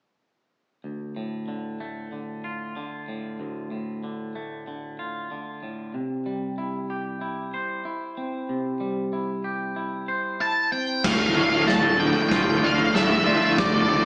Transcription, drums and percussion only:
11.04 kick medium
11.04 snare soft
11.04 crash medium
11.68 snare soft
12.31 kick medium
12.31 snare soft
12.95 snare soft
13.58 kick medium
13.58 snare soft

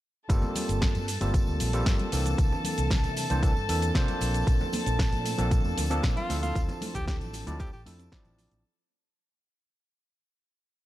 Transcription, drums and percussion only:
0.30 kick loud
0.30 closed hi-hat medium
0.30 tambourine medium
0.30 shaker soft
0.42 tambourine soft
0.42 low conga medium
0.55 open hi-hat loud
0.55 tambourine loud
0.55 high conga loud
0.55 shaker medium
0.68 closed hi-hat medium
0.68 tambourine soft
0.68 shaker soft
0.82 kick loud
0.82 snare loud
0.82 closed hi-hat medium
0.82 tambourine soft
0.82 shaker soft
0.95 closed hi-hat soft
0.95 tambourine soft
1.08 open hi-hat loud
1.08 tambourine medium
1.08 shaker medium
1.21 closed hi-hat medium
1.21 tambourine soft
1.21 high conga medium
1.21 shaker soft
1.34 kick loud
1.34 closed hi-hat medium
1.34 tambourine soft
1.34 shaker soft
1.47 tambourine soft
1.60 open hi-hat loud
1.60 tambourine medium
1.60 muted conga medium
1.60 shaker medium
1.73 closed hi-hat medium
1.73 tambourine soft
1.73 shaker soft
1.86 kick loud
1.86 snare loud
1.86 closed hi-hat medium
1.86 tambourine soft
1.86 shaker soft
1.99 closed hi-hat soft
1.99 tambourine soft
1.99 high conga medium
2.12 open hi-hat loud
2.12 tambourine medium
2.12 shaker medium
2.26 closed hi-hat medium
2.26 tambourine soft
2.26 muted conga medium
2.26 shaker soft
2.38 kick loud
2.38 closed hi-hat medium
2.38 tambourine soft
2.38 shaker soft
2.52 tambourine soft
2.52 low conga medium
2.64 open hi-hat loud
2.64 tambourine medium
2.64 high conga loud
2.64 shaker medium
2.78 closed hi-hat medium
2.78 tambourine soft
2.78 shaker soft
2.90 kick loud
2.90 snare loud
2.90 closed hi-hat medium
2.90 tambourine medium
2.90 shaker soft
3.04 closed hi-hat soft
3.04 tambourine soft
3.16 open hi-hat loud
3.16 tambourine loud
3.16 muted conga medium
3.16 shaker medium
3.30 closed hi-hat medium
3.30 tambourine soft
3.30 high conga medium
3.30 shaker soft
3.43 kick loud
3.43 closed hi-hat medium
3.43 tambourine soft
3.43 shaker soft
3.57 tambourine soft
3.69 open hi-hat loud
3.69 tambourine medium
3.69 shaker medium
3.82 closed hi-hat medium
3.82 tambourine soft
3.82 shaker soft
3.95 kick loud
3.95 snare loud
3.95 closed hi-hat medium
3.95 tambourine medium
3.95 shaker soft
4.08 closed hi-hat soft
4.08 tambourine soft
4.08 muted conga medium
4.08 high conga medium
4.21 open hi-hat loud
4.21 tambourine medium
4.21 shaker medium
4.34 closed hi-hat medium
4.34 tambourine soft
4.34 shaker soft
4.47 kick loud
4.47 closed hi-hat medium
4.47 tambourine soft
4.47 shaker soft
4.60 tambourine soft
4.60 low conga medium
4.73 open hi-hat loud
4.73 tambourine medium
4.73 high conga loud
4.73 shaker medium
4.86 closed hi-hat medium
4.86 tambourine soft
4.86 shaker soft
4.99 kick loud
4.99 snare loud
4.99 closed hi-hat medium
4.99 tambourine soft
4.99 shaker soft
5.12 closed hi-hat soft
5.12 tambourine soft
5.26 open hi-hat loud
5.26 tambourine medium
5.26 shaker medium
5.38 closed hi-hat medium
5.38 tambourine soft
5.38 high conga medium
5.38 shaker soft
5.51 kick loud
5.51 closed hi-hat medium
5.51 tambourine medium
5.51 shaker soft
5.64 tambourine soft
5.78 open hi-hat loud
5.78 tambourine medium
5.78 muted conga medium
5.78 shaker medium
5.90 closed hi-hat soft
5.90 tambourine soft
5.90 shaker soft
6.03 kick loud
6.03 snare loud
6.03 closed hi-hat medium
6.03 tambourine medium
6.03 shaker soft
6.17 closed hi-hat soft
6.17 tambourine soft
6.17 high conga medium
6.30 open hi-hat loud
6.30 tambourine medium
6.30 shaker medium
6.43 closed hi-hat medium
6.43 tambourine soft
6.43 muted conga medium
6.43 shaker soft
6.55 kick loud
6.55 closed hi-hat medium
6.55 tambourine soft
6.55 shaker soft
6.69 closed hi-hat soft
6.69 tambourine soft
6.69 low conga medium
6.81 open hi-hat loud
6.81 tambourine medium
6.81 high conga medium
6.81 shaker medium
6.94 kick medium
6.94 closed hi-hat medium
6.94 tambourine soft
6.94 shaker soft
7.08 kick loud
7.08 snare loud
7.08 closed hi-hat medium
7.08 tambourine medium
7.08 shaker soft
7.21 closed hi-hat soft
7.21 tambourine soft
7.33 open hi-hat loud
7.33 tambourine medium
7.33 muted conga soft
7.33 shaker medium
7.47 closed hi-hat medium
7.47 tambourine soft
7.47 high conga medium
7.47 shaker soft
7.59 kick loud
7.59 closed hi-hat medium
7.59 tambourine soft
7.59 shaker soft
7.73 tambourine soft
7.86 open hi-hat loud
7.86 tambourine medium
7.86 shaker medium
7.99 closed hi-hat medium
7.99 tambourine soft
7.99 shaker soft
8.12 kick loud
8.12 snare loud
8.12 closed hi-hat medium
8.12 tambourine medium
8.12 shaker soft
8.25 closed hi-hat soft
8.25 tambourine soft
8.25 muted conga medium
8.25 high conga medium
8.38 open hi-hat loud
8.38 tambourine medium
8.38 shaker medium
8.51 closed hi-hat medium
8.51 tambourine soft
8.51 shaker soft

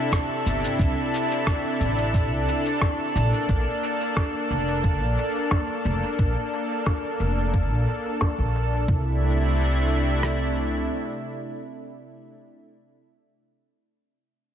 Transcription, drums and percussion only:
0.12 kick loud
0.12 cross-stick medium
0.12 cabasa soft
0.47 cabasa medium
0.64 cabasa soft
0.79 kick loud
0.79 cabasa soft
1.14 cabasa medium
1.31 cabasa soft
1.47 kick medium
1.47 cross-stick medium
1.47 cabasa soft
1.81 cabasa medium
1.98 cabasa soft
2.14 kick medium
2.14 cabasa soft
2.48 cabasa medium
2.65 cabasa soft
2.81 kick loud
2.81 cross-stick medium
2.81 cabasa soft
3.16 cabasa medium
3.33 cabasa soft
3.49 kick medium
3.49 cabasa soft
3.83 cabasa medium
4.00 cabasa soft
4.17 kick medium
4.17 cross-stick medium
4.17 cabasa soft
4.51 cabasa medium
4.68 cabasa soft
4.84 kick medium
4.84 cabasa soft
5.18 cabasa medium
5.35 cabasa soft
5.51 kick loud
5.51 cross-stick medium
5.51 cabasa soft
5.85 cabasa medium
6.03 cabasa soft
6.19 kick medium
6.19 cabasa soft
6.53 cabasa medium
6.71 cabasa soft
6.86 kick medium
6.86 cross-stick medium
6.86 cabasa soft
7.21 cabasa medium
7.38 cabasa soft
7.54 kick medium
7.54 cabasa soft
7.88 cabasa medium
8.05 cabasa soft
8.21 kick medium
8.21 cross-stick medium
8.55 cabasa medium
8.72 cabasa soft
8.88 kick loud
10.23 cross-stick medium

